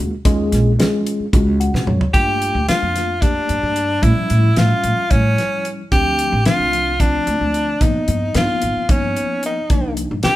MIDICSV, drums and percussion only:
0, 0, Header, 1, 2, 480
1, 0, Start_track
1, 0, Tempo, 540054
1, 223, Time_signature, 7, 3, 24, 8
1, 9207, End_track
2, 0, Start_track
2, 0, Title_t, "Drums"
2, 224, Note_on_c, 9, 36, 107
2, 224, Note_on_c, 9, 42, 82
2, 313, Note_off_c, 9, 36, 0
2, 313, Note_off_c, 9, 42, 0
2, 466, Note_on_c, 9, 42, 62
2, 473, Note_on_c, 9, 38, 34
2, 555, Note_off_c, 9, 42, 0
2, 561, Note_off_c, 9, 38, 0
2, 708, Note_on_c, 9, 42, 72
2, 714, Note_on_c, 9, 38, 110
2, 797, Note_off_c, 9, 42, 0
2, 803, Note_off_c, 9, 38, 0
2, 947, Note_on_c, 9, 42, 63
2, 1036, Note_off_c, 9, 42, 0
2, 1184, Note_on_c, 9, 36, 102
2, 1185, Note_on_c, 9, 42, 82
2, 1273, Note_off_c, 9, 36, 0
2, 1274, Note_off_c, 9, 42, 0
2, 1429, Note_on_c, 9, 42, 53
2, 1518, Note_off_c, 9, 42, 0
2, 1555, Note_on_c, 9, 38, 58
2, 1644, Note_off_c, 9, 38, 0
2, 1664, Note_on_c, 9, 47, 64
2, 1753, Note_off_c, 9, 47, 0
2, 1787, Note_on_c, 9, 43, 92
2, 1876, Note_off_c, 9, 43, 0
2, 1903, Note_on_c, 9, 36, 92
2, 1903, Note_on_c, 9, 42, 69
2, 1991, Note_off_c, 9, 36, 0
2, 1991, Note_off_c, 9, 42, 0
2, 2148, Note_on_c, 9, 42, 58
2, 2237, Note_off_c, 9, 42, 0
2, 2387, Note_on_c, 9, 42, 82
2, 2393, Note_on_c, 9, 38, 95
2, 2476, Note_off_c, 9, 42, 0
2, 2482, Note_off_c, 9, 38, 0
2, 2628, Note_on_c, 9, 42, 61
2, 2634, Note_on_c, 9, 38, 33
2, 2716, Note_off_c, 9, 42, 0
2, 2723, Note_off_c, 9, 38, 0
2, 2862, Note_on_c, 9, 36, 96
2, 2864, Note_on_c, 9, 42, 81
2, 2951, Note_off_c, 9, 36, 0
2, 2953, Note_off_c, 9, 42, 0
2, 3103, Note_on_c, 9, 42, 54
2, 3192, Note_off_c, 9, 42, 0
2, 3341, Note_on_c, 9, 42, 57
2, 3430, Note_off_c, 9, 42, 0
2, 3580, Note_on_c, 9, 42, 76
2, 3581, Note_on_c, 9, 36, 95
2, 3669, Note_off_c, 9, 42, 0
2, 3670, Note_off_c, 9, 36, 0
2, 3821, Note_on_c, 9, 42, 55
2, 3910, Note_off_c, 9, 42, 0
2, 4057, Note_on_c, 9, 42, 67
2, 4063, Note_on_c, 9, 38, 96
2, 4146, Note_off_c, 9, 42, 0
2, 4152, Note_off_c, 9, 38, 0
2, 4298, Note_on_c, 9, 42, 55
2, 4387, Note_off_c, 9, 42, 0
2, 4538, Note_on_c, 9, 42, 73
2, 4541, Note_on_c, 9, 36, 92
2, 4627, Note_off_c, 9, 42, 0
2, 4629, Note_off_c, 9, 36, 0
2, 4784, Note_on_c, 9, 42, 50
2, 4790, Note_on_c, 9, 38, 28
2, 4873, Note_off_c, 9, 42, 0
2, 4879, Note_off_c, 9, 38, 0
2, 5021, Note_on_c, 9, 42, 48
2, 5110, Note_off_c, 9, 42, 0
2, 5260, Note_on_c, 9, 36, 99
2, 5260, Note_on_c, 9, 42, 68
2, 5349, Note_off_c, 9, 36, 0
2, 5349, Note_off_c, 9, 42, 0
2, 5499, Note_on_c, 9, 42, 57
2, 5588, Note_off_c, 9, 42, 0
2, 5737, Note_on_c, 9, 42, 72
2, 5743, Note_on_c, 9, 38, 106
2, 5826, Note_off_c, 9, 42, 0
2, 5832, Note_off_c, 9, 38, 0
2, 5984, Note_on_c, 9, 42, 57
2, 6073, Note_off_c, 9, 42, 0
2, 6221, Note_on_c, 9, 36, 101
2, 6221, Note_on_c, 9, 42, 80
2, 6310, Note_off_c, 9, 36, 0
2, 6310, Note_off_c, 9, 42, 0
2, 6462, Note_on_c, 9, 42, 51
2, 6551, Note_off_c, 9, 42, 0
2, 6703, Note_on_c, 9, 42, 54
2, 6792, Note_off_c, 9, 42, 0
2, 6941, Note_on_c, 9, 36, 97
2, 6941, Note_on_c, 9, 42, 82
2, 7030, Note_off_c, 9, 36, 0
2, 7030, Note_off_c, 9, 42, 0
2, 7179, Note_on_c, 9, 42, 58
2, 7268, Note_off_c, 9, 42, 0
2, 7417, Note_on_c, 9, 42, 74
2, 7424, Note_on_c, 9, 38, 102
2, 7506, Note_off_c, 9, 42, 0
2, 7512, Note_off_c, 9, 38, 0
2, 7658, Note_on_c, 9, 42, 62
2, 7747, Note_off_c, 9, 42, 0
2, 7902, Note_on_c, 9, 36, 102
2, 7902, Note_on_c, 9, 42, 81
2, 7990, Note_off_c, 9, 42, 0
2, 7991, Note_off_c, 9, 36, 0
2, 8146, Note_on_c, 9, 42, 51
2, 8234, Note_off_c, 9, 42, 0
2, 8380, Note_on_c, 9, 42, 55
2, 8468, Note_off_c, 9, 42, 0
2, 8620, Note_on_c, 9, 42, 71
2, 8622, Note_on_c, 9, 36, 95
2, 8709, Note_off_c, 9, 42, 0
2, 8711, Note_off_c, 9, 36, 0
2, 8860, Note_on_c, 9, 42, 53
2, 8949, Note_off_c, 9, 42, 0
2, 9091, Note_on_c, 9, 42, 71
2, 9097, Note_on_c, 9, 38, 101
2, 9180, Note_off_c, 9, 42, 0
2, 9186, Note_off_c, 9, 38, 0
2, 9207, End_track
0, 0, End_of_file